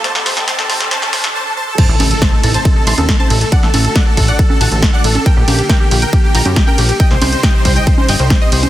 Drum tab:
CC |----------------|x---------------|----------------|----------------|
RD |----------------|x-x-x-x-x-x-x-x-|x-x-x-x-x-x-x-x-|x-x-x-x-x-x-x-x-|
HH |x-oxx-oxx-ox----|x-oxx-oxx-oxx-ox|x-oxx-oxx-oxx-ox|x-oxx-oxx-oxx-ox|
SD |oooooooooooo----|----o-------o---|-o--o-------o---|----o-------o---|
CG |---o------------|--o--------o-o--|--o------o-----o|--o--------o-o--|
BD |----------------|o---o---o---o---|o---o-o-o---o---|o---o---o---o---|

CC |----------------|
RD |x-x-x-x-x-x-x-x-|
HH |x-oxx-oxx-oxx-ox|
SD |-o--o-------o---|
CG |--o------o-----o|
BD |o---o-o-o---o---|